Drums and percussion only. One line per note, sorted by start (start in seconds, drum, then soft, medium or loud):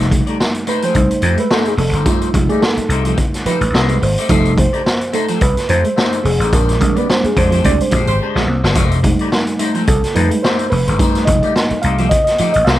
0.00 snare soft
0.12 kick medium
0.12 closed hi-hat medium
0.27 closed hi-hat soft
0.40 snare medium
0.55 closed hi-hat soft
0.67 closed hi-hat medium
0.82 closed hi-hat medium
0.95 kick medium
0.95 closed hi-hat medium
1.11 closed hi-hat soft
1.22 closed hi-hat medium
1.38 closed hi-hat soft
1.51 snare loud
1.65 closed hi-hat soft
1.78 open hi-hat medium
1.93 closed hi-hat medium
2.06 kick loud
2.06 closed hi-hat loud
2.22 closed hi-hat medium
2.34 kick medium
2.34 closed hi-hat medium
2.49 closed hi-hat soft
2.62 snare loud
2.77 closed hi-hat soft
2.90 closed hi-hat medium
3.05 closed hi-hat medium
3.17 kick medium
3.17 closed hi-hat medium
3.34 snare soft
3.34 closed hi-hat medium
3.46 closed hi-hat medium
3.61 closed hi-hat medium
3.75 snare loud
3.89 closed hi-hat soft
4.02 open hi-hat medium
4.18 closed hi-hat medium
4.29 kick loud
4.29 closed hi-hat loud
4.45 closed hi-hat soft
4.58 kick medium
4.58 closed hi-hat medium
4.74 closed hi-hat soft
4.86 snare loud
5.01 closed hi-hat soft
5.13 closed hi-hat medium
5.28 closed hi-hat medium
5.41 kick medium
5.41 closed hi-hat medium
5.57 snare soft
5.57 closed hi-hat medium
5.69 closed hi-hat medium
5.85 closed hi-hat soft
5.98 snare loud
6.13 closed hi-hat medium
6.25 open hi-hat loud
6.41 closed hi-hat medium
6.53 kick loud
6.53 closed hi-hat loud
6.69 snare soft
6.69 closed hi-hat medium
6.81 kick medium
6.81 closed hi-hat medium
6.96 closed hi-hat soft
7.10 snare loud
7.24 closed hi-hat soft
7.37 kick medium
7.37 closed hi-hat medium
7.52 closed hi-hat medium
7.64 kick medium
7.64 closed hi-hat medium
7.80 closed hi-hat medium
7.91 kick loud
7.91 closed hi-hat medium
8.07 closed hi-hat medium
8.36 snare medium
8.64 snare medium
8.75 kick loud
8.75 closed hi-hat loud
8.92 closed hi-hat medium
9.04 kick medium
9.04 closed hi-hat medium
9.19 closed hi-hat soft
9.32 snare loud
9.47 closed hi-hat soft
9.59 closed hi-hat medium
9.75 closed hi-hat soft
9.87 kick medium
9.87 closed hi-hat medium
10.04 snare soft
10.04 closed hi-hat medium
10.16 closed hi-hat medium
10.31 closed hi-hat medium
10.44 snare loud
10.59 closed hi-hat soft
10.72 open hi-hat medium
10.88 closed hi-hat medium
10.99 kick loud
10.99 closed hi-hat medium
11.15 snare soft
11.15 closed hi-hat soft
11.27 kick medium
11.27 closed hi-hat medium
11.43 closed hi-hat soft
11.56 snare loud
11.70 closed hi-hat soft
11.82 closed hi-hat medium
11.98 closed hi-hat medium
12.11 kick medium
12.11 closed hi-hat medium
12.27 snare soft
12.27 closed hi-hat soft
12.38 closed hi-hat medium
12.54 closed hi-hat medium
12.67 snare loud